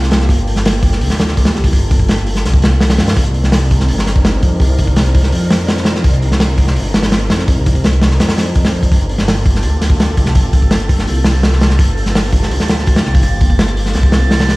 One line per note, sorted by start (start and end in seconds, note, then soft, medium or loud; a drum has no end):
0.00 0.28 C2 medium
0.00 3.13 A#3 medium
0.00 3.13 F4 medium
0.00 3.13 G4 medium
0.00 3.13 A4 medium
0.00 snare medium
0.11 snare loud
0.11 open hi-hat medium
0.20 snare medium
0.29 1.03 G1 loud
0.29 kick loud
0.29 open hi-hat medium
0.38 closed hi-hat soft
0.47 open hi-hat medium
0.56 snare medium
0.65 snare loud
0.65 open hi-hat medium
0.82 kick loud
0.82 open hi-hat medium
0.92 snare soft
1.01 1.54 D2 medium
1.01 open hi-hat medium
1.10 snare medium
1.18 snare loud
1.18 open hi-hat medium
1.28 snare medium
1.37 kick medium
1.37 open hi-hat medium
1.45 snare loud
1.45 open hi-hat medium
1.55 1.71 C2 medium
1.55 snare medium
1.64 kick medium
1.64 open hi-hat medium
1.73 2.43 G1 loud
1.73 kick loud
1.73 open hi-hat medium
1.91 kick loud
1.91 open hi-hat medium
2.00 kick loud
2.08 snare loud
2.08 open hi-hat medium
2.18 closed hi-hat soft
2.27 open hi-hat medium
2.35 snare soft
2.45 3.01 C2 medium
2.45 snare soft
2.45 open hi-hat medium
2.54 kick medium
2.62 snare loud
2.62 open hi-hat medium
2.81 snare loud
2.81 open hi-hat medium
2.90 snare loud
2.90 open hi-hat medium
2.97 3.15 G2 loud
2.97 snare loud
2.97 open hi-hat medium
3.07 snare loud
3.07 open hi-hat medium
3.17 3.90 C2 loud
3.17 8.88 C4 medium
3.17 8.88 D4 medium
3.17 8.88 D#4 medium
3.17 8.88 A#4 medium
3.17 kick loud
3.17 open hi-hat loud
3.25 closed hi-hat soft
3.34 open hi-hat medium
3.44 snare soft
3.52 snare loud
3.52 open hi-hat loud
3.71 kick medium
3.71 open hi-hat medium
3.80 snare soft
3.88 4.41 G1 medium
3.88 open hi-hat medium
3.98 snare medium
4.06 snare soft
4.06 open hi-hat medium
4.16 kick loud
4.25 snare loud
4.25 open hi-hat medium
4.42 4.59 F2 medium
4.42 kick medium
4.42 open hi-hat medium
4.60 5.31 C2 loud
4.60 kick loud
4.60 open hi-hat medium
4.78 kick medium
4.78 open hi-hat medium
4.87 kick medium
4.96 snare loud
4.96 open hi-hat medium
5.06 closed hi-hat soft
5.15 kick loud
5.15 open hi-hat medium
5.23 snare soft
5.32 6.03 F2 medium
5.32 open hi-hat medium
5.50 snare loud
5.50 open hi-hat medium
5.68 snare loud
5.68 open hi-hat medium
5.77 snare medium
5.85 snare loud
5.85 open hi-hat medium
5.95 snare medium
6.04 6.78 C2 loud
6.04 kick loud
6.04 open hi-hat medium
6.13 closed hi-hat soft
6.22 open hi-hat medium
6.32 snare medium
6.40 snare loud
6.40 open hi-hat medium
6.58 kick medium
6.58 open hi-hat medium
6.67 snare soft
6.76 7.29 G1 medium
6.76 open hi-hat medium
6.94 snare loud
6.94 open hi-hat medium
7.03 snare loud
7.03 open hi-hat medium
7.12 snare loud
7.12 open hi-hat medium
7.30 7.46 F2 medium
7.30 snare loud
7.30 open hi-hat medium
7.39 snare medium
7.48 8.18 C2 loud
7.48 kick loud
7.48 open hi-hat medium
7.66 kick loud
7.66 open hi-hat medium
7.75 kick medium
7.84 snare loud
7.84 open hi-hat medium
7.93 closed hi-hat soft
8.02 snare loud
8.02 open hi-hat medium
8.11 snare soft
8.20 8.90 F2 medium
8.20 snare loud
8.20 open hi-hat medium
8.29 snare loud
8.29 open hi-hat medium
8.38 snare loud
8.38 open hi-hat medium
8.55 kick medium
8.55 open hi-hat medium
8.65 snare loud
8.65 open hi-hat medium
8.83 kick medium
8.83 open hi-hat medium
8.91 9.65 G1 loud
8.91 14.56 A#3 medium
8.91 14.56 F4 medium
8.91 14.56 G4 medium
8.91 14.56 A4 medium
8.91 14.56 A6 medium
8.91 kick loud
8.91 open hi-hat medium
9.01 closed hi-hat soft
9.09 open hi-hat medium
9.18 snare medium
9.28 snare loud
9.28 open hi-hat medium
9.46 kick loud
9.46 open hi-hat medium
9.55 snare soft
9.63 10.16 D2 medium
9.63 open hi-hat medium
9.81 snare soft
9.81 open hi-hat medium
9.90 kick loud
10.00 snare loud
10.00 open hi-hat medium
10.17 10.34 C2 medium
10.17 kick medium
10.17 open hi-hat medium
10.25 snare medium
10.35 11.06 G1 loud
10.35 kick loud
10.35 open hi-hat medium
10.53 kick loud
10.53 open hi-hat medium
10.62 kick medium
10.71 snare loud
10.71 open hi-hat loud
10.80 closed hi-hat soft
10.89 kick medium
10.89 open hi-hat medium
10.99 snare soft
11.07 11.78 C2 medium
11.07 open hi-hat medium
11.24 snare loud
11.24 open hi-hat medium
11.43 snare loud
11.43 open hi-hat medium
11.52 snare medium
11.60 snare loud
11.60 open hi-hat medium
11.70 snare medium
11.79 12.52 G1 loud
11.79 kick loud
11.79 open hi-hat loud
11.87 closed hi-hat soft
11.97 open hi-hat medium
12.06 snare soft
12.15 snare loud
12.15 open hi-hat medium
12.33 kick loud
12.33 open hi-hat medium
12.43 snare soft
12.51 13.03 D2 medium
12.51 open hi-hat medium
12.60 snare medium
12.68 snare loud
12.68 open hi-hat medium
12.78 snare medium
12.86 kick medium
12.86 open hi-hat medium
12.96 snare loud
12.96 open hi-hat medium
13.05 13.21 C2 medium
13.05 snare medium
13.14 kick loud
13.14 open hi-hat medium
13.23 13.93 G1 loud
13.23 kick loud
13.23 open hi-hat medium
13.40 kick medium
13.40 open hi-hat medium
13.50 kick loud
13.59 snare loud
13.59 open hi-hat medium
13.68 closed hi-hat soft
13.77 open hi-hat medium
13.86 snare soft
13.94 14.56 C2 medium
13.94 snare soft
13.94 open hi-hat medium
14.03 kick medium
14.12 snare loud
14.12 open hi-hat medium
14.31 snare loud
14.31 open hi-hat medium
14.39 snare loud
14.39 open hi-hat medium
14.49 snare loud
14.49 open hi-hat medium